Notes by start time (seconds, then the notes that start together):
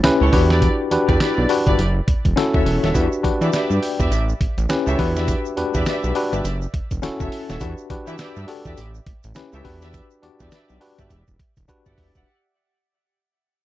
0.03 C#2 C#4 E4 G4 B4, snare, closed hi-hat, tambourine
0.21 C#2 E4 G4 A4 C#5
0.32 E2 D4 F#4 G4 B4, kick, open hi-hat, tambourine
0.50 E4 G4 B4 D5, snare, closed hi-hat
0.62 kick, closed hi-hat, tambourine
0.91 E2 D4 F#4 G4 B4, closed hi-hat, tambourine
1.08 E2 E4 G4 B4 D5, kick, closed hi-hat
1.20 E4 G4 B4 D5, snare, closed hi-hat, tambourine
1.38 B1
1.49 D4 F#4 G4 B4, open hi-hat, tambourine
1.66 G1 E4 G4 B4 D5, kick, closed hi-hat
1.78 F#1, closed hi-hat, tambourine
2.08 E1, kick, closed hi-hat
2.25 E1, kick, closed hi-hat
2.36 C#4 E4 F#4 A4, snare, closed hi-hat, tambourine
2.53 D#1 F#4 A4 C#5 E5, kick
2.66 E1, open hi-hat, tambourine
2.83 D#1 F#4 A4 C#5 E5, snare, closed hi-hat
2.94 E2 D4 F#4 G4 B4, kick, closed hi-hat, tambourine, shaker
3.12 shaker
3.23 E3 D4 F#4 G4 B4, kick, closed hi-hat, tambourine
3.41 E3 G4 B4 D5 E5, closed hi-hat, shaker
3.53 G4 B4 D5 E5, snare, closed hi-hat, tambourine, shaker
3.70 G2, shaker
3.83 G5, open hi-hat, tambourine
3.99 E2 G4 B4 D5 E5, kick, closed hi-hat, shaker
4.11 A1, closed hi-hat, tambourine, shaker
4.29 shaker
4.41 A1, kick, closed hi-hat
4.58 A1, closed hi-hat, shaker
4.69 C#2 C#4 E4 G4 B4, snare, closed hi-hat, tambourine, shaker
4.87 C#2 G4 A4 C#5 E5, shaker
4.98 E2 D4 F#4 G4 B4, kick, open hi-hat, tambourine
5.16 G4 B4 D5 E5, snare, closed hi-hat, shaker
5.28 kick, closed hi-hat, tambourine, shaker
5.45 shaker
5.57 E2 D4 F#4 G4 B4, closed hi-hat, tambourine
5.74 E2 G4 B4 D5 E5, kick, closed hi-hat, shaker
5.86 G4 B4 D5 E5, snare, closed hi-hat, tambourine, shaker
6.04 B1, shaker
6.15 D4 F#4 G4 B4, open hi-hat, tambourine
6.32 G1 G4 B4 D5 E5, closed hi-hat, shaker
6.44 F#1, closed hi-hat, tambourine, shaker
6.62 shaker
6.74 E1, kick, closed hi-hat
6.91 E1, kick, closed hi-hat, shaker
7.02 E1 C#4 E4 F#4 A4, snare, closed hi-hat, tambourine, shaker
7.20 E1 F#4 A4 C#5 E5, kick, shaker
7.32 open hi-hat, tambourine
7.49 D#1 F#4 A4 C#5 E5, snare, closed hi-hat, shaker
7.60 E2 D4 F#4 G4 B4, kick, closed hi-hat, tambourine, shaker
7.78 shaker
7.90 E3 D4 F#4 G4 B4, kick, closed hi-hat, tambourine
8.07 E3 G4 B4 D5 E5, closed hi-hat, shaker
8.18 G4 B4 D5 E5, snare, closed hi-hat, tambourine, shaker
8.36 G2, shaker
8.48 D4 F#4 G4 A4, open hi-hat, tambourine
8.65 E2 G4 B4 D5 E5, kick, closed hi-hat, shaker
8.77 A1, closed hi-hat, tambourine, shaker
8.95 shaker
9.06 A1, kick, closed hi-hat
9.23 A1, closed hi-hat, shaker
9.35 C#2 C#4 E4 G4 B4, snare, closed hi-hat, tambourine, shaker
9.53 C#2 G4 A4 C#5 E5, shaker
9.64 E2 D4 F#4 G4 B4, kick, open hi-hat, tambourine
9.82 G4 B4 D5 E5, snare, closed hi-hat, shaker
9.93 kick, closed hi-hat, tambourine, shaker
10.11 shaker
10.22 E2 D4 F#4 G4 D5, closed hi-hat, tambourine
10.40 E2 G4 B4 D5 E5, kick, closed hi-hat, shaker
10.51 G4 B4 D5 E5, snare, closed hi-hat, tambourine, shaker
10.69 B1, shaker
10.81 D4 F#4 G4 B4, open hi-hat, tambourine
10.98 G1 G4 B4 D5 E5, kick, closed hi-hat, shaker
11.10 E1, kick, closed hi-hat, shaker
11.28 E1, kick, shaker
11.39 kick, closed hi-hat
11.57 E1, kick, closed hi-hat, shaker
11.68 D4 F#4 G4 B4, kick, closed hi-hat, shaker
11.86 G1 G4 D5 E5 F#5, kick, shaker
11.98 E1, kick, open hi-hat
12.15 D#1 G4 D5 E5 F#5, kick, closed hi-hat, shaker